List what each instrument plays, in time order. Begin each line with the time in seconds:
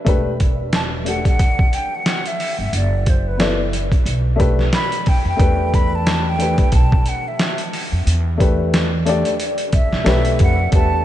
0.05 upright bass E1, upright piano A3 D4 G4 B4, kick, closed hi-hat
0.40 kick, closed hi-hat
0.73 flute A5, snare, closed hi-hat
1.05 upright piano A3 D4 G4 A4, flute F#5, closed hi-hat
1.25 flute F#5, kick, closed hi-hat
1.39 kick, closed hi-hat
1.59 kick
1.73 flute G5, closed hi-hat
1.95 flute F#5
2.06 snare, closed hi-hat
2.26 flute E5, closed hi-hat
2.40 open hi-hat
2.59 upright bass G1, flute E5
2.73 upright bass F#1, flute D5, closed hi-hat
3.06 flute C5, kick, closed hi-hat
3.28 flute B4
3.37 upright piano B3 E4 A4 D5, snare, closed hi-hat
3.73 closed hi-hat
3.92 kick, closed hi-hat
4.06 upright bass B1, closed hi-hat
4.36 upright piano A3 D4 G4 B4, kick, closed hi-hat
4.59 snare
4.73 flute B5, snare, closed hi-hat
4.92 closed hi-hat
5.06 flute G5, kick, open hi-hat
5.25 upright bass F2, flute G5
5.37 upright bass E2, upright piano A3 D4 G4, kick, closed hi-hat
5.41 upright piano B4
5.74 flute B5, kick, closed hi-hat
5.95 flute A5
6.07 snare, closed hi-hat
6.29 flute G5
6.38 upright piano A3 D4 G4 B4, closed hi-hat
6.58 flute G5, kick, closed hi-hat
6.72 upright bass B1, flute A5, kick, closed hi-hat
6.92 kick
7.06 flute F#5, closed hi-hat
7.28 flute E5
7.39 snare, closed hi-hat
7.58 closed hi-hat
7.73 open hi-hat
7.92 upright bass F2
8.07 upright bass E2, closed hi-hat
8.38 upright piano A3 D4 G4 B4, kick, closed hi-hat
8.74 snare, closed hi-hat
9.06 upright piano A3 D4 G4 D5, closed hi-hat
9.25 closed hi-hat
9.40 closed hi-hat
9.58 closed hi-hat
9.73 upright bass D2, flute E5, kick, closed hi-hat
9.93 upright bass C2, snare
10.04 upright bass B1, upright piano A3 D4 G4 B4, flute E5, snare, closed hi-hat
10.25 closed hi-hat
10.39 upright bass F2, flute F#5, kick, closed hi-hat
10.71 upright bass E2, upright piano A3 D4 G4, flute A5, kick, closed hi-hat
10.75 upright piano B4